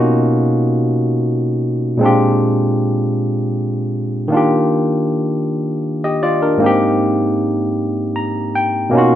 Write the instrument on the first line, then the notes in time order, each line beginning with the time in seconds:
tine electric piano
Already playing: B2 A#3 C#4 D#4 F4 F#4
1.97 A#2 G#3 C4
2.03 D4 F4 G4
4.28 D#3 A#3
4.32 D4 F4
4.37 G4
6.04 G4 D#5
6.23 F4 D5
6.42 D4 A#4
6.58 G#2 A#3
6.62 C4 D#4
6.66 G4
8.16 A#5
8.55 G5
8.90 B2 A#3 C#4
8.95 D#4 F4 F#4